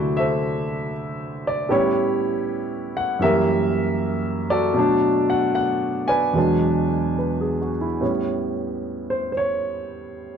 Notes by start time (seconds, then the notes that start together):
Already playing: D2 C3 D3 F#3 A3 E4 F#4 A4 C5 D5 E5
0.17 A4 C5 E5
1.47 D5
1.69 A2 G3 B3 C#4 E4 G4 C#5
2.97 F#5
3.19 F#2 E3 G3 G4 A#4 E5
3.24 A#3
4.50 F#4 A4 D5
4.74 B2 F#3 A3
4.79 D4
5.30 F#5
5.55 F#5
6.08 B4 D5 G#5
6.33 E2 B2 F#3 G#3 B3
6.38 D4
7.19 B4
7.41 G#4
7.62 F#4
7.81 E4
8.01 A2 G3 B3 C#4
9.10 C5
9.32 C5
9.37 C#5